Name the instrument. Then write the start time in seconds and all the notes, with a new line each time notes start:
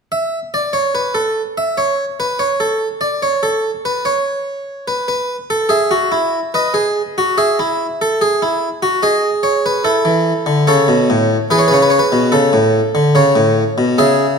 harpsichord
0.12 E5
0.54 D5
0.73 C#5
0.95 B4
1.15 A4
1.58 E5
1.77 C#5
2.20 B4
2.39 C#5
2.60 A4
3.01 D5
3.22 C#5
3.43 A4
3.85 B4
4.05 C#5
4.88 B4
5.08 B4
5.50 A4
5.69 G#4 E5
5.91 F#4
6.12 E4
6.54 B4 D#5
6.74 G#4
7.18 F#4
7.38 G#4 E5
7.59 E4
8.01 A4
8.21 G#4
8.42 E4
8.83 F#4
9.03 G#4 D#5
9.43 C#5
9.66 B4
9.84 E4 A4
10.05 E3
10.46 D3
10.67 C#3 A4 C#5
10.88 B2
11.10 A2
11.50 E3 G#4 B4
11.59 C#5
11.68 C#3 B4
11.74 C#5
11.82 B4
11.90 C#5
11.99 B4
12.12 B2
12.32 C#3 A4
12.53 A2
12.95 D3
13.15 C#3 C#5
13.36 A2
13.78 B2
13.98 C#3 G#4 E5